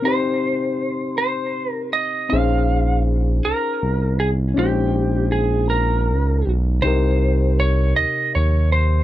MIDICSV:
0, 0, Header, 1, 4, 480
1, 0, Start_track
1, 0, Tempo, 754717
1, 27, Time_signature, 6, 3, 24, 8
1, 5746, End_track
2, 0, Start_track
2, 0, Title_t, "Lead electric guitar"
2, 0, Program_c, 0, 29
2, 33, Note_on_c, 0, 72, 76
2, 742, Note_off_c, 0, 72, 0
2, 749, Note_on_c, 0, 72, 74
2, 1080, Note_off_c, 0, 72, 0
2, 1080, Note_on_c, 0, 70, 74
2, 1202, Note_off_c, 0, 70, 0
2, 1228, Note_on_c, 0, 75, 77
2, 1461, Note_on_c, 0, 77, 77
2, 1474, Note_off_c, 0, 75, 0
2, 1918, Note_off_c, 0, 77, 0
2, 2194, Note_on_c, 0, 70, 67
2, 2667, Note_off_c, 0, 70, 0
2, 2670, Note_on_c, 0, 68, 64
2, 2734, Note_off_c, 0, 68, 0
2, 2918, Note_on_c, 0, 67, 73
2, 3367, Note_off_c, 0, 67, 0
2, 3383, Note_on_c, 0, 68, 66
2, 3621, Note_off_c, 0, 68, 0
2, 3624, Note_on_c, 0, 70, 72
2, 4140, Note_off_c, 0, 70, 0
2, 4339, Note_on_c, 0, 72, 86
2, 4829, Note_off_c, 0, 72, 0
2, 4832, Note_on_c, 0, 73, 82
2, 5062, Note_off_c, 0, 73, 0
2, 5065, Note_on_c, 0, 75, 89
2, 5308, Note_off_c, 0, 75, 0
2, 5310, Note_on_c, 0, 73, 82
2, 5532, Note_off_c, 0, 73, 0
2, 5548, Note_on_c, 0, 72, 82
2, 5746, Note_off_c, 0, 72, 0
2, 5746, End_track
3, 0, Start_track
3, 0, Title_t, "Reed electric piano"
3, 0, Program_c, 1, 4
3, 0, Control_c, 1, 64, 127
3, 15, Note_on_c, 1, 60, 50
3, 26, Note_on_c, 1, 63, 47
3, 37, Note_on_c, 1, 67, 48
3, 49, Note_on_c, 1, 72, 59
3, 1435, Note_off_c, 1, 60, 0
3, 1441, Note_off_c, 1, 63, 0
3, 1446, Note_off_c, 1, 67, 0
3, 1453, Note_off_c, 1, 72, 0
3, 1457, Note_on_c, 1, 60, 38
3, 1467, Note_on_c, 1, 63, 46
3, 1476, Control_c, 1, 64, 0
3, 1480, Note_on_c, 1, 68, 48
3, 1490, Note_on_c, 1, 72, 55
3, 1499, Note_on_c, 1, 61, 52
3, 1503, Note_off_c, 1, 60, 0
3, 1600, Control_c, 1, 64, 127
3, 2880, Note_off_c, 1, 61, 0
3, 2881, Note_off_c, 1, 63, 0
3, 2888, Note_off_c, 1, 68, 0
3, 2888, Note_on_c, 1, 61, 53
3, 2893, Note_off_c, 1, 72, 0
3, 2899, Note_on_c, 1, 63, 51
3, 2913, Note_on_c, 1, 56, 48
3, 2923, Note_on_c, 1, 72, 58
3, 4312, Note_off_c, 1, 61, 0
3, 4318, Note_off_c, 1, 63, 0
3, 4324, Note_off_c, 1, 56, 0
3, 4329, Note_off_c, 1, 72, 0
3, 4332, Note_on_c, 1, 48, 52
3, 4344, Note_on_c, 1, 63, 52
3, 4355, Control_c, 1, 64, 0
3, 4356, Note_on_c, 1, 67, 51
3, 4371, Note_on_c, 1, 70, 60
3, 4461, Control_c, 1, 64, 127
3, 5746, Note_off_c, 1, 48, 0
3, 5746, Note_off_c, 1, 63, 0
3, 5746, Note_off_c, 1, 67, 0
3, 5746, Note_off_c, 1, 70, 0
3, 5746, End_track
4, 0, Start_track
4, 0, Title_t, "Analog synth bass"
4, 0, Program_c, 2, 38
4, 1479, Note_on_c, 2, 34, 99
4, 2167, Note_off_c, 2, 34, 0
4, 2200, Note_on_c, 2, 36, 39
4, 2244, Note_off_c, 2, 36, 0
4, 2432, Note_on_c, 2, 36, 83
4, 2884, Note_off_c, 2, 36, 0
4, 2910, Note_on_c, 2, 34, 99
4, 3878, Note_on_c, 2, 37, 86
4, 3887, Note_off_c, 2, 34, 0
4, 4089, Note_off_c, 2, 37, 0
4, 4115, Note_on_c, 2, 35, 87
4, 4327, Note_off_c, 2, 35, 0
4, 4356, Note_on_c, 2, 36, 92
4, 5046, Note_off_c, 2, 36, 0
4, 5080, Note_on_c, 2, 39, 42
4, 5124, Note_off_c, 2, 39, 0
4, 5314, Note_on_c, 2, 39, 85
4, 5746, Note_off_c, 2, 39, 0
4, 5746, End_track
0, 0, End_of_file